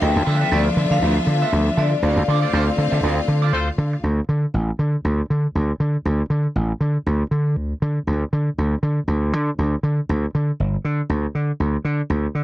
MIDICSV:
0, 0, Header, 1, 8, 480
1, 0, Start_track
1, 0, Tempo, 503778
1, 10, Time_signature, 4, 2, 24, 8
1, 11851, End_track
2, 0, Start_track
2, 0, Title_t, "Vibraphone"
2, 0, Program_c, 0, 11
2, 16, Note_on_c, 0, 79, 103
2, 506, Note_off_c, 0, 79, 0
2, 507, Note_on_c, 0, 74, 104
2, 877, Note_on_c, 0, 77, 91
2, 882, Note_off_c, 0, 74, 0
2, 1362, Note_off_c, 0, 77, 0
2, 1362, Note_on_c, 0, 76, 90
2, 1701, Note_on_c, 0, 74, 86
2, 1706, Note_off_c, 0, 76, 0
2, 3332, Note_off_c, 0, 74, 0
2, 11851, End_track
3, 0, Start_track
3, 0, Title_t, "String section"
3, 0, Program_c, 1, 48
3, 8, Note_on_c, 1, 65, 79
3, 8, Note_on_c, 1, 76, 85
3, 1885, Note_off_c, 1, 65, 0
3, 1886, Note_off_c, 1, 76, 0
3, 1921, Note_on_c, 1, 77, 85
3, 1923, Note_on_c, 1, 65, 77
3, 3803, Note_off_c, 1, 65, 0
3, 3803, Note_off_c, 1, 77, 0
3, 11851, End_track
4, 0, Start_track
4, 0, Title_t, "Clean electric guitar"
4, 0, Program_c, 2, 27
4, 5, Note_on_c, 2, 65, 73
4, 13, Note_on_c, 2, 69, 88
4, 15, Note_on_c, 2, 71, 91
4, 19, Note_on_c, 2, 76, 88
4, 203, Note_off_c, 2, 65, 0
4, 207, Note_off_c, 2, 69, 0
4, 208, Note_off_c, 2, 71, 0
4, 210, Note_off_c, 2, 76, 0
4, 240, Note_on_c, 2, 65, 68
4, 248, Note_on_c, 2, 69, 77
4, 252, Note_on_c, 2, 71, 83
4, 253, Note_on_c, 2, 76, 82
4, 370, Note_off_c, 2, 65, 0
4, 375, Note_off_c, 2, 69, 0
4, 376, Note_off_c, 2, 71, 0
4, 377, Note_off_c, 2, 76, 0
4, 388, Note_on_c, 2, 71, 60
4, 389, Note_on_c, 2, 76, 60
4, 395, Note_on_c, 2, 69, 50
4, 399, Note_on_c, 2, 65, 45
4, 479, Note_off_c, 2, 65, 0
4, 480, Note_off_c, 2, 69, 0
4, 485, Note_off_c, 2, 71, 0
4, 485, Note_off_c, 2, 76, 0
4, 491, Note_on_c, 2, 65, 73
4, 492, Note_on_c, 2, 69, 80
4, 498, Note_on_c, 2, 76, 87
4, 500, Note_on_c, 2, 71, 86
4, 622, Note_off_c, 2, 76, 0
4, 624, Note_off_c, 2, 71, 0
4, 630, Note_off_c, 2, 69, 0
4, 645, Note_off_c, 2, 65, 0
4, 870, Note_on_c, 2, 77, 75
4, 874, Note_on_c, 2, 69, 68
4, 875, Note_on_c, 2, 71, 65
4, 881, Note_on_c, 2, 65, 59
4, 959, Note_off_c, 2, 65, 0
4, 960, Note_off_c, 2, 69, 0
4, 965, Note_off_c, 2, 77, 0
4, 967, Note_off_c, 2, 71, 0
4, 970, Note_on_c, 2, 65, 97
4, 972, Note_on_c, 2, 69, 93
4, 978, Note_on_c, 2, 71, 91
4, 978, Note_on_c, 2, 76, 99
4, 1099, Note_off_c, 2, 76, 0
4, 1102, Note_off_c, 2, 71, 0
4, 1105, Note_off_c, 2, 69, 0
4, 1124, Note_off_c, 2, 65, 0
4, 1351, Note_on_c, 2, 76, 61
4, 1353, Note_on_c, 2, 71, 61
4, 1360, Note_on_c, 2, 69, 62
4, 1364, Note_on_c, 2, 65, 55
4, 1445, Note_off_c, 2, 76, 0
4, 1446, Note_off_c, 2, 71, 0
4, 1449, Note_off_c, 2, 69, 0
4, 1451, Note_off_c, 2, 65, 0
4, 1689, Note_on_c, 2, 65, 82
4, 1693, Note_on_c, 2, 71, 75
4, 1694, Note_on_c, 2, 69, 86
4, 1698, Note_on_c, 2, 76, 78
4, 1817, Note_off_c, 2, 71, 0
4, 1818, Note_off_c, 2, 76, 0
4, 1827, Note_off_c, 2, 69, 0
4, 1842, Note_off_c, 2, 65, 0
4, 1931, Note_on_c, 2, 60, 88
4, 1938, Note_on_c, 2, 65, 96
4, 1940, Note_on_c, 2, 69, 89
4, 1944, Note_on_c, 2, 74, 87
4, 2083, Note_off_c, 2, 60, 0
4, 2087, Note_off_c, 2, 65, 0
4, 2088, Note_off_c, 2, 69, 0
4, 2090, Note_off_c, 2, 74, 0
4, 2177, Note_on_c, 2, 60, 64
4, 2181, Note_on_c, 2, 65, 74
4, 2187, Note_on_c, 2, 69, 74
4, 2191, Note_on_c, 2, 74, 82
4, 2295, Note_off_c, 2, 74, 0
4, 2297, Note_off_c, 2, 60, 0
4, 2298, Note_off_c, 2, 69, 0
4, 2299, Note_off_c, 2, 65, 0
4, 2307, Note_on_c, 2, 74, 72
4, 2310, Note_on_c, 2, 69, 63
4, 2316, Note_on_c, 2, 65, 61
4, 2317, Note_on_c, 2, 60, 57
4, 2401, Note_off_c, 2, 60, 0
4, 2402, Note_off_c, 2, 74, 0
4, 2403, Note_off_c, 2, 65, 0
4, 2403, Note_off_c, 2, 69, 0
4, 2412, Note_on_c, 2, 60, 78
4, 2414, Note_on_c, 2, 65, 80
4, 2419, Note_on_c, 2, 69, 77
4, 2429, Note_on_c, 2, 74, 90
4, 2531, Note_off_c, 2, 74, 0
4, 2534, Note_off_c, 2, 69, 0
4, 2542, Note_off_c, 2, 65, 0
4, 2564, Note_off_c, 2, 60, 0
4, 2777, Note_on_c, 2, 76, 77
4, 2781, Note_on_c, 2, 69, 70
4, 2786, Note_on_c, 2, 65, 66
4, 2789, Note_on_c, 2, 60, 60
4, 2877, Note_off_c, 2, 60, 0
4, 2877, Note_off_c, 2, 76, 0
4, 2879, Note_off_c, 2, 69, 0
4, 2881, Note_off_c, 2, 65, 0
4, 2888, Note_on_c, 2, 60, 86
4, 2891, Note_on_c, 2, 65, 98
4, 2895, Note_on_c, 2, 69, 88
4, 2899, Note_on_c, 2, 74, 102
4, 3006, Note_off_c, 2, 74, 0
4, 3013, Note_off_c, 2, 69, 0
4, 3014, Note_off_c, 2, 65, 0
4, 3041, Note_off_c, 2, 60, 0
4, 3259, Note_on_c, 2, 74, 67
4, 3265, Note_on_c, 2, 69, 60
4, 3270, Note_on_c, 2, 65, 63
4, 3273, Note_on_c, 2, 60, 57
4, 3357, Note_off_c, 2, 74, 0
4, 3360, Note_off_c, 2, 69, 0
4, 3363, Note_off_c, 2, 65, 0
4, 3364, Note_off_c, 2, 60, 0
4, 11851, End_track
5, 0, Start_track
5, 0, Title_t, "Horn section"
5, 0, Program_c, 3, 61
5, 2404, Note_on_c, 3, 60, 88
5, 2404, Note_on_c, 3, 65, 82
5, 2404, Note_on_c, 3, 72, 95
5, 2405, Note_on_c, 3, 69, 75
5, 2489, Note_off_c, 3, 60, 0
5, 2489, Note_off_c, 3, 72, 0
5, 2490, Note_off_c, 3, 65, 0
5, 2490, Note_off_c, 3, 69, 0
5, 3357, Note_on_c, 3, 69, 106
5, 3358, Note_on_c, 3, 60, 106
5, 3358, Note_on_c, 3, 65, 97
5, 3358, Note_on_c, 3, 72, 115
5, 3511, Note_off_c, 3, 69, 0
5, 3512, Note_off_c, 3, 65, 0
5, 3513, Note_off_c, 3, 60, 0
5, 3513, Note_off_c, 3, 72, 0
5, 11851, End_track
6, 0, Start_track
6, 0, Title_t, "String section"
6, 0, Program_c, 4, 48
6, 0, Note_on_c, 4, 53, 94
6, 0, Note_on_c, 4, 62, 99
6, 2, Note_on_c, 4, 59, 79
6, 6, Note_on_c, 4, 57, 82
6, 1901, Note_off_c, 4, 53, 0
6, 1901, Note_off_c, 4, 59, 0
6, 1904, Note_off_c, 4, 57, 0
6, 1927, Note_on_c, 4, 50, 87
6, 1928, Note_on_c, 4, 57, 83
6, 1930, Note_on_c, 4, 60, 87
6, 3807, Note_off_c, 4, 62, 0
6, 3824, Note_off_c, 4, 50, 0
6, 3825, Note_off_c, 4, 57, 0
6, 3826, Note_off_c, 4, 60, 0
6, 11851, End_track
7, 0, Start_track
7, 0, Title_t, "Slap bass"
7, 0, Program_c, 5, 36
7, 17, Note_on_c, 5, 38, 105
7, 100, Note_off_c, 5, 38, 0
7, 154, Note_on_c, 5, 38, 99
7, 218, Note_off_c, 5, 38, 0
7, 257, Note_on_c, 5, 50, 97
7, 406, Note_off_c, 5, 50, 0
7, 492, Note_on_c, 5, 38, 96
7, 642, Note_off_c, 5, 38, 0
7, 733, Note_on_c, 5, 50, 120
7, 816, Note_off_c, 5, 50, 0
7, 864, Note_on_c, 5, 50, 101
7, 930, Note_off_c, 5, 50, 0
7, 971, Note_on_c, 5, 38, 109
7, 1122, Note_off_c, 5, 38, 0
7, 1209, Note_on_c, 5, 50, 90
7, 1360, Note_off_c, 5, 50, 0
7, 1453, Note_on_c, 5, 38, 80
7, 1603, Note_off_c, 5, 38, 0
7, 1691, Note_on_c, 5, 50, 102
7, 1841, Note_off_c, 5, 50, 0
7, 1929, Note_on_c, 5, 38, 109
7, 2013, Note_off_c, 5, 38, 0
7, 2066, Note_on_c, 5, 38, 90
7, 2130, Note_off_c, 5, 38, 0
7, 2174, Note_on_c, 5, 50, 101
7, 2323, Note_off_c, 5, 50, 0
7, 2413, Note_on_c, 5, 38, 96
7, 2562, Note_off_c, 5, 38, 0
7, 2651, Note_on_c, 5, 50, 111
7, 2734, Note_off_c, 5, 50, 0
7, 2785, Note_on_c, 5, 50, 88
7, 2850, Note_off_c, 5, 50, 0
7, 2889, Note_on_c, 5, 38, 99
7, 3039, Note_off_c, 5, 38, 0
7, 3127, Note_on_c, 5, 50, 89
7, 3361, Note_off_c, 5, 50, 0
7, 3361, Note_on_c, 5, 38, 74
7, 3514, Note_off_c, 5, 38, 0
7, 3604, Note_on_c, 5, 50, 102
7, 3756, Note_off_c, 5, 50, 0
7, 3844, Note_on_c, 5, 38, 90
7, 3996, Note_off_c, 5, 38, 0
7, 4084, Note_on_c, 5, 50, 81
7, 4236, Note_off_c, 5, 50, 0
7, 4324, Note_on_c, 5, 33, 77
7, 4476, Note_off_c, 5, 33, 0
7, 4564, Note_on_c, 5, 50, 92
7, 4716, Note_off_c, 5, 50, 0
7, 4808, Note_on_c, 5, 38, 97
7, 4958, Note_off_c, 5, 38, 0
7, 5052, Note_on_c, 5, 50, 75
7, 5202, Note_off_c, 5, 50, 0
7, 5290, Note_on_c, 5, 38, 69
7, 5440, Note_off_c, 5, 38, 0
7, 5526, Note_on_c, 5, 50, 93
7, 5678, Note_off_c, 5, 50, 0
7, 5768, Note_on_c, 5, 38, 100
7, 5919, Note_off_c, 5, 38, 0
7, 6002, Note_on_c, 5, 50, 88
7, 6155, Note_off_c, 5, 50, 0
7, 6246, Note_on_c, 5, 33, 78
7, 6398, Note_off_c, 5, 33, 0
7, 6484, Note_on_c, 5, 50, 92
7, 6637, Note_off_c, 5, 50, 0
7, 6731, Note_on_c, 5, 38, 96
7, 6882, Note_off_c, 5, 38, 0
7, 6967, Note_on_c, 5, 50, 74
7, 7207, Note_off_c, 5, 50, 0
7, 7207, Note_on_c, 5, 38, 77
7, 7359, Note_off_c, 5, 38, 0
7, 7452, Note_on_c, 5, 50, 93
7, 7603, Note_off_c, 5, 50, 0
7, 7691, Note_on_c, 5, 38, 93
7, 7842, Note_off_c, 5, 38, 0
7, 7935, Note_on_c, 5, 50, 96
7, 8085, Note_off_c, 5, 50, 0
7, 8178, Note_on_c, 5, 38, 74
7, 8327, Note_off_c, 5, 38, 0
7, 8412, Note_on_c, 5, 50, 100
7, 8563, Note_off_c, 5, 50, 0
7, 8648, Note_on_c, 5, 38, 89
7, 8895, Note_off_c, 5, 38, 0
7, 8895, Note_on_c, 5, 50, 75
7, 9045, Note_off_c, 5, 50, 0
7, 9133, Note_on_c, 5, 38, 69
7, 9284, Note_off_c, 5, 38, 0
7, 9369, Note_on_c, 5, 50, 89
7, 9521, Note_off_c, 5, 50, 0
7, 9617, Note_on_c, 5, 38, 104
7, 9767, Note_off_c, 5, 38, 0
7, 9859, Note_on_c, 5, 50, 91
7, 10008, Note_off_c, 5, 50, 0
7, 10098, Note_on_c, 5, 31, 76
7, 10248, Note_off_c, 5, 31, 0
7, 10334, Note_on_c, 5, 50, 83
7, 10485, Note_off_c, 5, 50, 0
7, 10572, Note_on_c, 5, 38, 100
7, 10723, Note_off_c, 5, 38, 0
7, 10813, Note_on_c, 5, 50, 72
7, 10965, Note_off_c, 5, 50, 0
7, 11052, Note_on_c, 5, 38, 77
7, 11204, Note_off_c, 5, 38, 0
7, 11287, Note_on_c, 5, 50, 90
7, 11440, Note_off_c, 5, 50, 0
7, 11527, Note_on_c, 5, 38, 100
7, 11681, Note_off_c, 5, 38, 0
7, 11766, Note_on_c, 5, 50, 77
7, 11851, Note_off_c, 5, 50, 0
7, 11851, End_track
8, 0, Start_track
8, 0, Title_t, "Muted clean electric guitar strokes"
8, 633, Note_on_c, 9, 29, 45
8, 728, Note_off_c, 9, 29, 0
8, 736, Note_on_c, 9, 29, 40
8, 831, Note_off_c, 9, 29, 0
8, 1110, Note_on_c, 9, 29, 47
8, 1206, Note_off_c, 9, 29, 0
8, 1217, Note_on_c, 9, 29, 45
8, 1313, Note_off_c, 9, 29, 0
8, 1578, Note_on_c, 9, 29, 38
8, 1673, Note_off_c, 9, 29, 0
8, 1829, Note_on_c, 9, 29, 50
8, 1924, Note_off_c, 9, 29, 0
8, 2542, Note_on_c, 9, 29, 36
8, 2637, Note_off_c, 9, 29, 0
8, 2642, Note_on_c, 9, 29, 46
8, 2737, Note_off_c, 9, 29, 0
8, 3017, Note_on_c, 9, 29, 43
8, 3113, Note_off_c, 9, 29, 0
8, 3123, Note_on_c, 9, 29, 43
8, 3219, Note_off_c, 9, 29, 0
8, 3374, Note_on_c, 9, 29, 44
8, 3470, Note_off_c, 9, 29, 0
8, 3505, Note_on_c, 9, 29, 51
8, 3600, Note_off_c, 9, 29, 0
8, 3747, Note_on_c, 9, 29, 48
8, 3842, Note_off_c, 9, 29, 0
8, 11851, End_track
0, 0, End_of_file